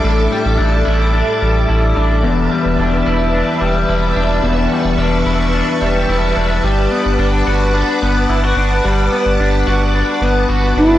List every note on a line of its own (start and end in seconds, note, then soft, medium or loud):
0.00 0.28 A1 medium
0.00 2.24 A2 medium
0.00 0.31 G3 medium
0.00 0.57 D4 medium
0.00 0.85 E4 medium
0.00 2.20 A4 medium
0.00 2.20 E5 medium
0.00 10.98 A5 medium
0.00 4.40 D6 medium
0.31 1.41 G3 medium
0.45 0.57 A1 medium
0.57 0.83 A1 loud
0.57 1.13 D4 medium
0.85 1.23 A1 medium
0.85 1.68 E4 medium
1.13 1.96 D4 medium
1.41 1.66 A1 medium
1.41 2.51 G3 soft
1.69 1.93 A1 loud
1.69 2.82 E4 medium
1.96 2.25 A1 medium
1.96 2.79 D4 medium
2.23 2.48 E1 medium
2.23 4.42 E2 medium
2.23 10.98 B4 medium
2.23 6.60 E5 medium
2.52 3.61 G3 medium
2.65 2.77 E1 medium
2.78 3.03 E1 medium
2.78 3.34 D4 medium
3.06 3.43 E1 medium
3.06 3.88 E4 medium
3.34 4.16 D4 medium
3.61 3.85 E1 medium
3.61 4.71 G3 medium
3.89 4.13 E1 medium
3.89 5.25 E4 soft
4.16 4.40 E1 medium
4.16 4.98 D4 medium
4.43 4.68 E1 loud
4.43 6.64 E2 medium
4.43 6.62 C#6 medium
4.72 5.81 G3 soft
4.84 4.97 E1 medium
4.98 5.22 E1 loud
4.98 5.54 D4 medium
5.25 5.62 E1 medium
5.25 6.08 E4 medium
5.54 6.36 D4 medium
5.81 6.06 E1 medium
5.81 6.64 G3 medium
6.09 6.33 E1 loud
6.09 6.70 E4 medium
6.36 6.61 E1 medium
6.36 7.19 D4 medium
6.63 6.88 G1 loud
6.63 8.84 G3 medium
6.63 10.98 F#5 medium
6.63 10.98 D6 medium
6.91 8.02 B3 medium
7.05 7.17 G1 medium
7.19 7.43 G1 loud
7.19 7.74 D4 medium
7.47 7.83 G1 medium
7.47 8.29 F#4 medium
7.74 8.57 D4 medium
8.02 8.26 G1 medium
8.02 9.12 B3 medium
8.29 8.53 G1 medium
8.29 8.44 E4 soft
8.44 9.66 F#4 soft
8.56 8.81 G1 medium
8.56 9.39 D4 medium
8.84 9.09 G1 loud
8.84 10.98 G3 medium
9.12 10.22 B3 soft
9.26 9.38 G1 medium
9.40 9.64 G1 loud
9.40 9.95 D4 medium
9.67 10.03 G1 medium
9.67 10.48 F#4 medium
9.95 10.77 D4 medium
10.21 10.46 G1 medium
10.21 10.98 B3 medium
10.49 10.73 G1 medium
10.49 10.98 F#4 medium
10.76 10.98 G1 medium
10.76 10.98 D4 soft
10.76 10.98 E4 medium